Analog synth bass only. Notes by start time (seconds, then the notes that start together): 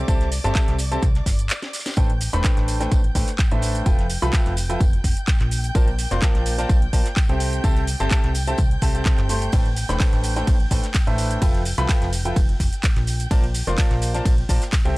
0.08 C2
0.44 G1
0.68 C2
1.02 C2
1.26 G1
1.97 A1
2.33 E1
2.57 A1
2.92 A1
3.15 A1
3.52 A1
3.86 F1
4.22 C2
4.46 F1
4.80 F1
5.04 F1
5.40 A#1
5.75 A#1
6.11 F1
6.35 A#1
6.69 A#1
6.93 A#1
7.29 C2
7.64 C2
8.00 G1
8.24 C2
8.58 C2
8.82 C2
9.18 G1
9.53 A1
9.89 E1
10.13 A1
10.47 A1
10.71 A1
11.07 A1
11.42 F1
11.78 C2
12.02 F1
12.36 F1
12.60 F1
12.96 A#1
13.31 A#1
13.67 F1
13.91 A#1
14.25 A#1
14.49 A#1
14.85 C2